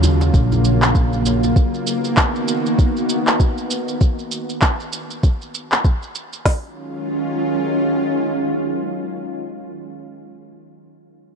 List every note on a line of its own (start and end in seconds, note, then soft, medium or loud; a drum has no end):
0.00 0.29 D#2 medium
0.00 1.52 C#3 medium
0.00 1.53 F#3 medium
0.00 1.54 A#3 medium
0.00 1.52 F4 medium
0.00 djembe bass medium
0.00 shaker medium
0.04 djembe slap medium
0.04 djembe tone soft
0.21 djembe slap medium
0.21 shaker soft
0.34 1.52 A#1 medium
0.34 kick loud
0.34 shaker soft
0.52 djembe tone medium
0.52 shaker soft
0.65 shaker medium
0.82 clap medium
0.82 shaker soft
0.95 kick loud
0.95 shaker soft
1.13 shaker soft
1.26 djembe slap medium
1.26 shaker medium
1.44 djembe slap soft
1.44 shaker soft
1.56 3.99 D#3 medium
1.56 3.99 A#3 medium
1.56 3.99 B3 medium
1.56 3.99 F#4 medium
1.56 kick loud
1.56 shaker soft
1.74 shaker soft
1.87 shaker medium
2.04 shaker soft
2.17 kick loud
2.17 clap medium
2.17 shaker soft
2.36 shaker soft
2.48 shaker medium
2.66 shaker soft
2.79 kick loud
2.79 shaker soft
2.97 shaker soft
3.09 shaker medium
3.27 clap medium
3.27 shaker soft
3.40 kick loud
3.40 shaker soft
3.58 shaker soft
3.71 shaker medium
3.88 shaker soft
4.01 kick loud
4.01 shaker soft
4.19 shaker soft
4.32 shaker medium
4.49 shaker soft
4.62 kick loud
4.62 clap medium
4.62 shaker soft
4.80 shaker soft
4.93 shaker medium
5.11 shaker soft
5.23 kick loud
5.23 shaker soft
5.42 shaker soft
5.55 shaker medium
5.72 clap medium
5.72 shaker soft
5.85 kick loud
5.85 shaker soft
6.03 shaker soft
6.15 shaker medium
6.33 shaker soft
6.45 9.67 D#3 medium
6.45 9.67 F#3 medium
6.45 9.66 G#3 medium
6.45 9.66 C#4 medium
6.45 9.66 F4 medium
6.45 kick medium
6.45 snare medium
6.45 open hi-hat medium